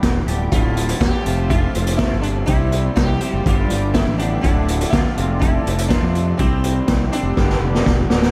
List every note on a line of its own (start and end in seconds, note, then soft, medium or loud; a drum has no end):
0.00 0.25 E1 medium
0.00 0.25 G2 medium
0.00 0.25 D3 medium
0.00 0.26 G3 medium
0.00 0.26 B3 medium
0.00 0.26 D4 medium
0.00 0.26 G4 medium
0.00 0.49 G4 medium
0.00 0.50 D5 medium
0.00 0.50 B5 medium
0.00 1.23 D6 medium
0.00 kick medium
0.00 snare medium
0.00 closed hi-hat medium
0.26 0.48 D1 medium
0.26 0.51 D3 medium
0.26 0.51 G3 medium
0.26 0.51 B3 medium
0.26 0.50 D4 medium
0.26 0.50 G4 medium
0.26 closed hi-hat medium
0.31 0.51 G2 medium
0.50 0.92 D1 medium
0.50 1.23 D2 medium
0.50 1.24 A2 medium
0.50 1.25 D3 medium
0.50 2.45 F3 medium
0.50 1.02 F4 medium
0.50 1.23 E5 medium
0.50 2.45 A5 medium
0.50 kick loud
0.50 closed hi-hat medium
0.54 1.25 A3 medium
0.54 1.25 E4 medium
0.77 closed hi-hat medium
0.89 closed hi-hat medium
1.00 1.10 E1 medium
1.00 1.51 G4 loud
1.00 kick loud
1.00 snare loud
1.00 closed hi-hat medium
1.25 1.66 F1 medium
1.25 1.97 F2 medium
1.25 1.97 C3 medium
1.25 1.98 F3 medium
1.25 1.98 A3 medium
1.25 1.98 C4 medium
1.25 1.98 F4 medium
1.25 3.44 C5 medium
1.25 3.44 C6 medium
1.25 closed hi-hat medium
1.50 1.96 F4 medium
1.50 kick loud
1.50 closed hi-hat medium
1.75 2.05 F1 medium
1.75 closed hi-hat medium
1.87 closed hi-hat medium
1.97 2.46 F2 medium
1.97 2.47 C3 medium
1.97 2.21 E4 medium
1.97 kick loud
1.97 snare medium
1.97 closed hi-hat soft
2.01 2.47 F3 medium
2.01 2.47 A3 medium
2.01 2.48 C4 medium
2.01 2.48 F4 medium
2.13 2.42 G1 medium
2.21 2.28 D4 medium
2.21 closed hi-hat soft
2.46 2.88 C2 medium
2.46 3.20 C3 medium
2.46 3.20 G3 medium
2.46 3.20 C4 medium
2.46 2.97 E4 medium
2.46 3.46 E4 medium
2.46 4.43 G5 medium
2.46 kick loud
2.46 closed hi-hat medium
2.50 3.21 E4 medium
2.50 3.20 G4 medium
2.50 3.19 C5 medium
2.72 closed hi-hat soft
2.96 3.16 C2 medium
2.96 3.47 G4 medium
2.96 kick loud
2.96 snare loud
2.96 closed hi-hat medium
3.21 3.46 C3 medium
3.21 3.45 G3 medium
3.21 3.45 C4 medium
3.21 3.45 E4 medium
3.21 3.44 G4 medium
3.21 3.44 C5 medium
3.21 closed hi-hat medium
3.33 3.43 F#1 medium
3.45 3.66 G1 medium
3.45 4.18 G2 medium
3.45 4.18 D3 medium
3.45 4.19 G3 medium
3.45 4.19 B3 medium
3.45 3.93 F4 medium
3.45 4.42 B4 medium
3.45 4.41 D5 medium
3.45 4.41 D6 medium
3.45 kick loud
3.45 closed hi-hat medium
3.49 4.19 D4 medium
3.49 4.18 G4 medium
3.70 4.01 G1 medium
3.70 closed hi-hat medium
3.94 4.17 E4 medium
3.94 kick medium
3.94 snare loud
3.94 closed hi-hat medium
4.07 4.37 A1 medium
4.18 4.43 B3 medium
4.18 4.40 D4 medium
4.18 4.42 D4 medium
4.18 4.42 G4 medium
4.18 closed hi-hat medium
4.22 4.43 G2 medium
4.22 4.44 D3 medium
4.22 4.43 G3 medium
4.41 4.84 D1 medium
4.41 5.16 D2 medium
4.41 5.16 A2 medium
4.41 4.89 D4 medium
4.41 6.37 A4 medium
4.41 6.37 D5 medium
4.41 5.16 E5 medium
4.41 5.16 D6 medium
4.41 kick loud
4.41 closed hi-hat medium
4.46 5.17 D3 medium
4.46 5.17 A3 medium
4.46 5.17 E4 medium
4.68 closed hi-hat medium
4.81 closed hi-hat medium
4.90 5.03 D2 medium
4.90 5.39 F4 medium
4.90 kick loud
4.90 snare loud
4.90 closed hi-hat medium
5.15 5.57 F1 medium
5.15 5.88 F2 medium
5.15 5.89 C3 medium
5.15 5.90 F3 medium
5.15 5.90 A3 medium
5.15 5.90 C4 medium
5.15 7.35 C5 medium
5.15 7.35 C6 medium
5.15 closed hi-hat medium
5.20 5.91 F4 medium
5.39 5.88 E4 medium
5.39 kick loud
5.39 closed hi-hat medium
5.66 5.96 F1 medium
5.66 closed hi-hat medium
5.78 closed hi-hat medium
5.88 6.37 F2 medium
5.88 6.38 C3 medium
5.88 6.38 F3 medium
5.88 6.38 A3 medium
5.88 6.39 C4 medium
5.88 6.37 D4 medium
5.88 kick medium
5.88 snare loud
5.88 closed hi-hat medium
5.93 6.39 F4 medium
6.02 6.32 F2 medium
6.15 closed hi-hat soft
6.38 6.79 C2 medium
6.38 7.11 C3 medium
6.38 7.12 G3 medium
6.38 7.12 C4 medium
6.38 7.12 E4 medium
6.38 8.31 G4 medium
6.38 7.36 E5 medium
6.38 kick loud
6.38 closed hi-hat medium
6.42 7.11 G4 medium
6.42 7.10 C5 medium
6.64 closed hi-hat medium
6.88 7.08 C2 medium
6.88 kick loud
6.88 snare loud
6.88 closed hi-hat medium
7.12 7.36 C3 medium
7.12 7.37 G3 medium
7.12 7.36 C4 medium
7.12 8.07 D4 medium
7.12 7.36 E4 medium
7.12 7.36 G4 medium
7.12 7.35 C5 medium
7.12 closed hi-hat medium
7.23 7.34 F1 medium
7.37 7.57 G1 medium
7.37 8.09 G2 medium
7.37 8.09 D3 medium
7.37 8.10 G3 medium
7.37 8.10 B3 medium
7.37 8.09 D4 medium
7.37 8.08 G4 medium
7.37 8.31 B4 medium
7.37 8.31 D5 medium
7.37 8.31 B5 medium
7.37 kick loud
7.37 snare medium
7.49 snare soft
7.60 7.83 F1 medium
7.74 snare medium
7.86 8.09 E1 medium
7.86 kick medium
7.86 snare medium
8.09 8.31 D1 medium
8.09 8.31 G2 medium
8.09 8.31 D3 medium
8.09 8.31 G3 medium
8.09 8.31 B3 medium
8.09 8.31 D4 medium
8.09 8.31 G4 medium
8.09 snare medium
8.22 snare medium